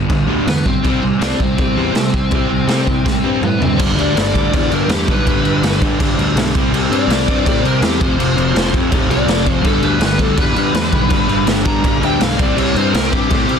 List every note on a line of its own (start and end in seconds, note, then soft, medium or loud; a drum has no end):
0.00 0.65 G2 medium
0.00 0.65 D3 medium
0.00 0.83 G3 medium
0.00 0.64 B3 medium
0.00 0.64 D4 medium
0.09 0.22 G1 medium
0.09 0.26 G2 medium
0.09 0.27 D3 medium
0.09 kick loud
0.09 crash medium
0.27 0.39 D2 medium
0.27 0.45 G2 medium
0.27 0.46 D3 medium
0.27 0.46 G3 loud
0.46 0.58 E2 medium
0.46 0.63 G2 medium
0.46 0.64 D3 medium
0.46 0.65 B3 medium
0.46 0.66 B4 medium
0.46 snare loud
0.46 crash medium
0.64 0.77 B1 medium
0.64 0.82 G2 medium
0.64 0.82 D3 medium
0.64 1.00 C4 medium
0.64 1.03 C5 medium
0.64 kick medium
0.84 0.96 C2 loud
0.84 1.00 C3 medium
0.84 1.00 G3 medium
0.84 1.02 C4 medium
0.84 1.60 E4 medium
0.84 kick loud
0.84 crash medium
1.01 1.14 C2 medium
1.01 1.18 C3 medium
1.01 1.18 G3 medium
1.19 1.33 C2 medium
1.19 1.37 C3 medium
1.19 1.37 G3 loud
1.19 1.38 C4 loud
1.19 1.39 D4 medium
1.19 snare loud
1.19 crash medium
1.23 1.41 D5 loud
1.38 1.52 C2 medium
1.38 1.55 C3 medium
1.38 1.55 G3 medium
1.38 3.38 C4 medium
1.38 kick medium
1.42 3.45 C5 loud
1.57 1.70 C2 medium
1.57 1.73 C3 medium
1.57 1.73 G3 medium
1.57 2.31 C4 medium
1.57 kick loud
1.57 crash medium
1.61 1.76 G3 medium
1.61 2.32 E4 medium
1.74 1.88 E2 medium
1.74 1.91 C3 medium
1.74 1.92 G3 medium
1.74 1.93 C4 medium
1.79 1.95 C4 loud
1.93 2.10 C3 medium
1.93 2.06 C3 loud
1.93 2.10 G3 medium
1.93 snare loud
1.93 crash medium
1.97 2.13 C3 medium
1.97 2.13 G3 medium
2.12 2.25 C2 loud
2.12 2.29 C3 medium
2.12 2.30 G3 medium
2.12 kick medium
2.30 2.44 C2 loud
2.30 2.48 C3 medium
2.30 2.49 G3 medium
2.30 2.49 C4 medium
2.30 3.05 E4 medium
2.30 kick loud
2.30 crash medium
2.49 2.61 C2 medium
2.49 2.66 C3 medium
2.49 2.67 G3 medium
2.67 2.85 C3 medium
2.67 2.79 C3 medium
2.67 2.85 G3 medium
2.67 2.85 C4 loud
2.67 snare loud
2.67 crash medium
2.87 2.99 C2 medium
2.87 3.04 C3 medium
2.87 3.04 G3 medium
2.87 kick medium
3.05 3.17 C2 medium
3.05 3.22 C3 medium
3.05 3.22 G3 medium
3.05 3.79 C4 medium
3.05 3.79 E4 medium
3.05 kick loud
3.05 snare medium
3.23 3.36 G2 medium
3.23 3.40 C3 medium
3.23 3.41 G3 medium
3.23 3.41 C4 loud
3.42 3.53 A2 medium
3.42 3.58 C3 medium
3.42 3.59 G3 medium
3.42 3.61 B3 medium
3.42 mid tom medium
3.46 3.63 B4 medium
3.59 3.81 G2 medium
3.59 3.76 C3 medium
3.59 3.77 G3 medium
3.59 3.78 C4 medium
3.59 floor tom medium
3.63 3.79 C5 medium
3.77 3.95 G1 medium
3.77 3.95 G2 loud
3.77 3.95 D3 medium
3.77 3.96 G3 loud
3.77 kick loud
3.77 crash loud
3.77 crash medium
3.96 4.14 D2 medium
3.96 4.14 G2 medium
3.96 4.14 D3 medium
3.96 4.15 G3 medium
3.96 crash medium
4.00 4.52 D5 loud
4.15 4.33 G1 loud
4.15 4.33 G2 medium
4.15 4.33 D3 medium
4.15 4.34 G3 loud
4.15 snare loud
4.15 crash medium
4.34 4.51 D2 medium
4.34 4.51 G2 medium
4.34 4.52 D3 loud
4.34 4.53 G3 medium
4.34 kick loud
4.34 crash medium
4.52 4.70 E2 medium
4.52 4.69 G2 medium
4.52 4.69 D3 medium
4.52 4.71 G3 loud
4.52 4.71 D5 medium
4.52 kick loud
4.52 crash medium
4.70 4.88 G2 medium
4.70 4.88 G2 loud
4.70 4.89 D3 medium
4.70 4.90 G3 loud
4.70 4.90 A#4 medium
4.70 crash medium
4.88 5.06 E2 medium
4.88 5.07 G2 medium
4.88 5.07 D3 medium
4.88 5.08 G3 loud
4.88 5.07 G4 medium
4.88 snare loud
4.88 crash medium
5.08 5.25 B1 loud
5.08 5.25 G2 medium
5.08 5.25 D3 medium
5.08 5.27 G3 medium
5.08 5.80 B4 loud
5.08 kick loud
5.08 crash medium
5.26 5.43 G1 loud
5.26 5.44 G2 medium
5.26 5.44 D3 loud
5.26 5.46 G3 loud
5.26 kick loud
5.26 crash medium
5.44 5.61 G1 medium
5.44 5.62 G2 medium
5.44 5.63 D3 medium
5.44 5.64 G3 loud
5.44 crash medium
5.62 5.79 G1 medium
5.62 5.80 G2 medium
5.62 5.81 D3 medium
5.62 5.82 G3 medium
5.62 snare loud
5.62 crash medium
5.81 5.99 G2 loud
5.81 5.98 G2 medium
5.81 6.00 D3 loud
5.81 6.00 G3 loud
5.81 kick medium
5.81 crash medium
6.00 6.16 G1 medium
6.00 6.17 G2 loud
6.00 6.17 D3 loud
6.00 6.18 G3 loud
6.00 kick loud
6.00 crash medium
6.17 6.34 D2 loud
6.17 6.35 G2 medium
6.17 6.36 D3 loud
6.17 6.36 G3 medium
6.17 crash medium
6.35 6.52 B1 loud
6.35 6.53 G2 medium
6.35 6.53 D3 medium
6.35 6.54 G3 medium
6.35 snare loud
6.35 crash loud
6.55 6.70 C2 medium
6.55 6.72 C3 loud
6.55 6.72 G3 loud
6.55 6.74 C4 loud
6.55 kick loud
6.55 crash medium
6.71 6.88 C2 loud
6.71 6.90 C3 medium
6.71 6.91 G3 loud
6.71 6.93 C4 loud
6.71 crash medium
6.90 7.07 G2 loud
6.90 7.09 C3 medium
6.90 7.10 G3 medium
6.90 7.11 C4 loud
6.90 7.44 D5 loud
6.90 crash medium
7.08 7.25 C2 loud
7.08 7.25 C3 medium
7.08 7.26 G3 loud
7.08 7.28 C4 medium
7.08 snare loud
7.08 crash medium
7.27 7.44 G2 medium
7.27 7.43 C3 medium
7.27 7.44 G3 medium
7.27 7.44 C4 loud
7.27 kick medium
7.27 crash medium
7.45 7.62 A2 loud
7.45 7.62 C3 medium
7.45 7.63 G3 loud
7.45 7.63 C4 loud
7.45 7.64 D5 loud
7.45 kick loud
7.45 crash medium
7.63 7.81 C3 medium
7.63 7.80 C3 loud
7.63 7.81 G3 loud
7.63 7.82 C4 loud
7.63 7.82 A#4 medium
7.63 crash medium
7.82 7.98 E2 loud
7.82 7.99 C3 medium
7.82 7.99 G3 medium
7.82 7.99 C4 loud
7.82 8.00 G4 medium
7.82 snare loud
7.82 crash medium
8.00 8.17 F1 loud
8.00 8.17 F2 medium
8.00 8.17 C3 loud
8.00 8.17 F3 loud
8.00 8.72 C5 loud
8.00 kick loud
8.00 crash medium
8.18 8.35 F1 loud
8.18 8.35 F2 loud
8.18 8.35 C3 loud
8.18 8.36 F3 loud
8.18 crash medium
8.36 8.53 F1 loud
8.36 8.52 F2 medium
8.36 8.52 C3 loud
8.36 8.52 F3 loud
8.36 crash medium
8.53 8.71 F1 medium
8.53 8.69 F2 medium
8.53 8.70 C3 medium
8.53 8.71 F3 loud
8.53 snare loud
8.53 crash medium
8.71 8.89 F2 medium
8.71 8.90 F2 medium
8.71 8.89 C3 loud
8.71 8.90 F3 loud
8.71 kick loud
8.71 crash medium
8.90 9.07 F1 medium
8.90 9.08 F2 loud
8.90 9.09 C3 medium
8.90 9.09 F3 loud
8.90 kick loud
8.90 crash medium
9.08 9.26 C2 medium
9.08 9.26 F2 medium
9.08 9.27 C3 medium
9.08 9.27 F3 loud
9.08 9.53 D5 loud
9.08 crash medium
9.26 9.44 F1 loud
9.26 9.44 F2 medium
9.26 9.45 C3 medium
9.26 9.45 F3 loud
9.26 snare loud
9.26 crash medium
9.45 9.63 F1 loud
9.45 9.62 F2 medium
9.45 9.63 C3 medium
9.45 9.63 F3 medium
9.45 kick loud
9.45 crash medium
9.53 9.63 C5 loud
9.62 9.81 G1 loud
9.62 9.80 G2 medium
9.62 9.80 D3 loud
9.62 9.81 G3 loud
9.62 11.10 B3 loud
9.62 11.10 D4 loud
9.62 9.85 A4 medium
9.62 kick loud
9.62 crash medium
9.81 9.99 D2 medium
9.81 9.99 G2 medium
9.81 9.99 D3 medium
9.81 10.00 G3 loud
9.81 crash medium
9.85 10.01 B4 medium
9.99 10.17 G1 medium
9.99 10.16 G2 medium
9.99 10.18 D3 loud
9.99 10.19 G3 loud
9.99 snare loud
9.99 crash medium
10.04 10.20 B4 loud
10.18 10.36 D2 medium
10.18 10.35 G2 medium
10.18 10.35 D3 medium
10.18 10.37 G3 loud
10.18 10.39 A4 loud
10.18 kick medium
10.18 crash medium
10.36 10.54 E2 medium
10.36 10.53 G2 medium
10.36 10.54 D3 loud
10.36 10.55 G3 loud
10.36 11.45 B4 loud
10.36 kick loud
10.36 crash loud
10.54 10.72 G2 medium
10.54 10.73 G2 medium
10.54 10.73 D3 loud
10.54 10.74 G3 loud
10.54 crash medium
10.73 10.91 E2 loud
10.73 10.91 G2 medium
10.73 10.91 D3 loud
10.73 10.92 G3 loud
10.73 snare loud
10.73 crash medium
10.92 11.10 B1 loud
10.92 11.07 G2 medium
10.92 11.07 D3 medium
10.92 11.09 G3 medium
10.92 kick loud
10.92 crash medium
11.08 11.28 G1 loud
11.08 11.25 G2 loud
11.08 11.26 D3 loud
11.08 11.27 G3 loud
11.08 12.38 B3 loud
11.08 12.38 D4 loud
11.08 kick loud
11.08 crash medium
11.26 11.46 G1 loud
11.26 11.45 G2 medium
11.26 11.45 D3 loud
11.26 11.47 G3 loud
11.26 crash medium
11.46 11.64 G1 medium
11.46 11.63 G2 medium
11.46 11.64 D3 loud
11.46 11.65 G3 medium
11.46 snare loud
11.46 crash medium
11.65 11.81 G2 medium
11.65 11.82 G2 medium
11.65 11.82 D3 loud
11.65 11.83 G3 loud
11.65 12.02 A#5 loud
11.65 kick loud
11.65 crash medium
11.82 12.01 G1 medium
11.82 12.00 G2 medium
11.82 12.00 D3 loud
11.82 12.02 G3 loud
11.82 kick loud
11.82 crash medium
12.01 12.19 D2 medium
12.01 12.17 G2 medium
12.01 12.18 D3 medium
12.01 12.20 G3 loud
12.01 12.22 G5 medium
12.01 crash medium
12.18 12.38 B1 medium
12.18 12.36 G2 medium
12.18 12.37 D3 loud
12.18 12.37 G3 loud
12.18 12.39 F5 loud
12.18 snare loud
12.18 crash medium
12.37 12.56 C2 medium
12.37 12.55 C3 loud
12.37 12.56 G3 medium
12.37 12.56 C4 loud
12.37 12.57 D5 loud
12.37 kick loud
12.37 crash medium
12.42 13.59 E4 loud
12.56 12.74 C2 loud
12.56 12.72 C3 loud
12.56 12.75 G3 loud
12.56 12.74 C4 loud
12.56 12.76 C#5 loud
12.56 crash medium
12.74 12.92 G2 medium
12.74 12.90 C3 medium
12.74 12.92 G3 loud
12.74 12.92 C4 medium
12.74 12.93 C5 loud
12.74 crash medium
12.91 13.11 C2 medium
12.91 13.09 C3 medium
12.91 13.10 G3 loud
12.91 13.10 C4 loud
12.91 13.11 A#4 loud
12.91 crash loud
12.95 snare loud
13.10 13.30 G2 medium
13.10 13.28 C3 medium
13.10 13.28 G3 medium
13.10 13.30 C4 loud
13.10 13.30 G4 loud
13.10 kick loud
13.10 crash medium
13.30 13.48 A2 loud
13.30 13.46 C3 medium
13.30 13.47 G3 loud
13.30 13.48 C4 loud
13.30 13.59 G4 loud
13.30 kick loud
13.30 crash medium
13.48 13.59 C3 medium
13.48 13.59 C3 loud
13.48 13.59 G3 loud
13.48 13.59 C4 medium
13.48 crash medium